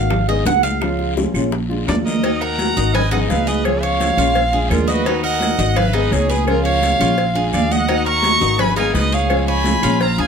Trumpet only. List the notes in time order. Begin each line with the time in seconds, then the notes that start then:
1.87 A#4
2.05 A#4
2.41 F#5
2.94 D#5
3.12 D#5
3.31 B4
3.48 B4
3.65 G#4
3.82 C#5
4.71 F4
4.89 F#4
5.24 D#5
5.78 B4
5.96 B4
6.13 G#4
6.31 G#4
6.48 F4
6.65 C#5
7.54 D5
7.72 D#5
8.07 A#5
8.59 G#5
8.77 F5
8.94 B4
9.13 C#5
9.48 G#5
10.01 F5
10.19 F5